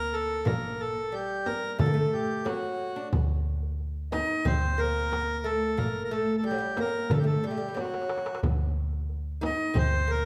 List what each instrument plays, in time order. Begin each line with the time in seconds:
Already playing: fm bass D2, oud A#3, accordion A#4
0.13 accordion A4
0.45 fm bass A1, oud A#3, accordion A#4, darbuka dum, frame drum
0.63 darbuka ka
0.80 accordion A4
0.96 darbuka ka
1.12 oud G3, accordion G4, darbuka ka
1.46 accordion A#4, frame drum
1.78 fm bass D3, oud A3, accordion A4, darbuka dum, frame drum
1.86 oud A#3
1.94 oud A3, darbuka ka
2.13 accordion G4, darbuka ka
2.45 oud F#3, accordion F#4, darbuka tek, frame drum
2.63 darbuka ka
2.96 oud D4
3.13 fm bass D2, darbuka dum, frame drum
3.29 darbuka ka
3.63 darbuka ka
3.80 darbuka ka
4.12 oud D#4, accordion D#5, darbuka tek, frame drum
4.45 fm bass D2, oud C4, accordion C5, darbuka dum, frame drum
4.62 darbuka ka
4.78 oud A#3, accordion A#4, darbuka ka
5.12 darbuka tek, frame drum
5.30 darbuka ka
5.44 oud A3, accordion A4
5.77 fm bass A1, oud A#3, accordion A#4, frame drum, darbuka dum
5.95 darbuka ka
6.05 accordion A#4
6.11 oud A3, accordion A4, darbuka ka
6.37 accordion A4
6.44 oud G3, accordion G4, darbuka ka
6.51 oud F#3
6.58 oud G3, darbuka ka
6.77 oud A#3, accordion A#4, darbuka tek, frame drum
7.10 fm bass D3, oud A3, accordion A4, darbuka dum, frame drum
7.18 accordion G4
7.24 oud A3, accordion A4, darbuka ka
7.44 oud G3, accordion G4, darbuka ka
7.51 oud A3
7.57 oud G3
7.68 oud G3
7.74 oud F#3, darbuka tek, frame drum
7.79 accordion F#4
7.85 darbuka ka
7.94 darbuka tek
8.02 darbuka ka
8.09 darbuka tek
8.18 darbuka ka
8.26 darbuka tek
8.35 darbuka ka
8.43 fm bass D2, darbuka dum, frame drum
8.60 darbuka ka
8.93 darbuka ka
9.09 darbuka ka
9.41 oud D#4, accordion D#5, darbuka tek, frame drum
9.74 fm bass D2, oud C4, accordion C5, darbuka dum, frame drum
9.93 darbuka ka
10.08 oud A#3, accordion A#4, darbuka ka